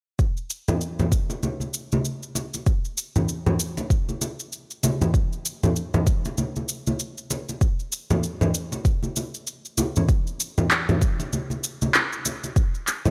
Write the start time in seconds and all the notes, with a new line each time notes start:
0.19 kick, shaker
0.37 shaker
0.50 shaker
0.68 low conga, shaker
0.81 shaker
0.99 low conga, shaker
1.12 kick, shaker
1.30 muted conga, shaker
1.43 high conga, shaker
1.60 high conga, shaker
1.74 shaker
1.92 high conga, shaker
2.05 shaker
2.23 shaker
2.35 muted conga, shaker
2.54 muted conga, shaker
2.66 kick, shaker
2.85 shaker
2.98 shaker
3.16 high conga, low conga, shaker
3.29 shaker
3.46 low conga, shaker
3.60 shaker
3.77 muted conga, high conga, shaker
3.90 kick, shaker
4.09 high conga, shaker
4.21 muted conga, shaker
4.40 shaker
4.53 shaker
4.71 shaker
4.83 muted conga, high conga, shaker
5.01 low conga, shaker
5.14 kick, shaker
5.33 shaker
5.45 shaker
5.63 low conga, shaker
5.76 shaker
5.94 low conga, shaker
6.07 kick, shaker
6.25 muted conga, shaker
6.38 high conga, shaker
6.56 high conga, shaker
6.69 shaker
6.87 high conga, shaker
7.00 shaker
7.18 shaker
7.30 muted conga, shaker
7.49 muted conga, shaker
7.61 kick, shaker
7.80 shaker
7.92 shaker
8.10 high conga, low conga, shaker
8.23 shaker
8.41 low conga, shaker
8.54 shaker
8.72 muted conga, high conga, shaker
8.85 kick, shaker
9.03 high conga, shaker
9.16 muted conga, shaker
9.34 shaker
9.47 shaker
9.65 shaker
9.78 muted conga, high conga, shaker
9.96 low conga, shaker
10.09 kick, shaker
10.27 shaker
10.40 shaker
10.58 low conga, shaker
10.71 clap, shaker
10.89 low conga, shaker
11.02 kick, shaker
11.20 muted conga, shaker
11.33 high conga, shaker
11.50 high conga, shaker
11.64 shaker
11.82 high conga, shaker
11.94 clap, shaker
12.13 shaker
12.25 muted conga, shaker
12.44 muted conga, shaker
12.56 kick, shaker
12.75 shaker
12.87 clap, shaker
13.05 high conga, low conga, shaker